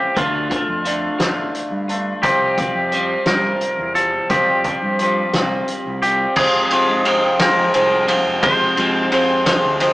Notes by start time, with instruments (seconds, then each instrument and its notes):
Already playing: overdriven electric guitar C3 F3 G3 C4 F4, clean electric guitar G4
0.15 fingered electric bass D2, overdriven electric guitar D3 A3 D4 F4, clean electric guitar F4, kick, closed hi-hat
0.50 overdriven electric guitar A3 D4 F4, kick, closed hi-hat
0.68 fingered electric bass F2
0.85 overdriven electric guitar D3 A3 D4 F4, closed hi-hat
1.19 fingered electric bass A1, overdriven electric guitar D3 A3 D4 F4, snare, closed hi-hat
1.55 closed hi-hat
1.71 fingered electric bass G2
1.88 overdriven electric guitar A3 D4 F4, closed hi-hat
2.22 fingered electric bass C2, overdriven electric guitar C3 F3 G3 C4 F4, clean electric guitar G4, kick, closed hi-hat
2.57 overdriven electric guitar G3 C4 F4, kick, closed hi-hat
2.75 fingered electric bass F2
2.92 overdriven electric guitar F3 G3 C4 F4, closed hi-hat
3.26 fingered electric bass G2, overdriven electric guitar C3 F3 G3 C4 F4, clean electric guitar A#4, snare, closed hi-hat
3.61 closed hi-hat
3.78 fingered electric bass E2
3.95 overdriven electric guitar G3 C4 F4, clean electric guitar A4, closed hi-hat
4.29 fingered electric bass F2, overdriven electric guitar F3 G3 C4 F4, clean electric guitar G4, kick, closed hi-hat
4.64 overdriven electric guitar G3 C4 F4, kick, closed hi-hat
4.83 fingered electric bass G2
4.99 overdriven electric guitar F3 G3 C4 F4, closed hi-hat
5.33 fingered electric bass C2, overdriven electric guitar F3 G3 C4 F4, snare, closed hi-hat
5.68 closed hi-hat
5.86 fingered electric bass C2
6.02 overdriven electric guitar G3 C4 F4, clean electric guitar G4, closed hi-hat
6.36 overdriven electric guitar F2 C3 F3 G#3 C4 F4, fingered electric bass F2, clean electric guitar G#4, kick, crash
6.70 overdriven electric guitar F2 C3 F3 G#3 C4 F4, ride
6.89 fingered electric bass G#2
7.05 overdriven electric guitar F2 C3 F3 G#3 C4 F4, ride
7.39 overdriven electric guitar F2 C3 F3 G#3 C4 F4, fingered electric bass F3, clean electric guitar A#4, snare, ride
7.73 fingered electric bass C2, overdriven electric guitar F2 C3 F3 G#3 C4 F4, ride
8.07 overdriven electric guitar F2 C3 F3 G#3 C4 F4, ride
8.26 fingered electric bass F2
8.41 overdriven electric guitar F2 C3 F3 G#3 C4 F4, clean electric guitar C5, kick, ride
8.77 overdriven electric guitar F2 C3 F3 G#3 C4 F4, fingered electric bass G#2, ride
9.11 overdriven electric guitar F2 C3 F3 G#3 C4 F4, fingered electric bass F2, ride
9.45 overdriven electric guitar F2 C3 F3 G#3 C4 F4, snare, ride
9.64 fingered electric bass D2
9.79 overdriven electric guitar F2 C3 F3 G#3 C4 F4, ride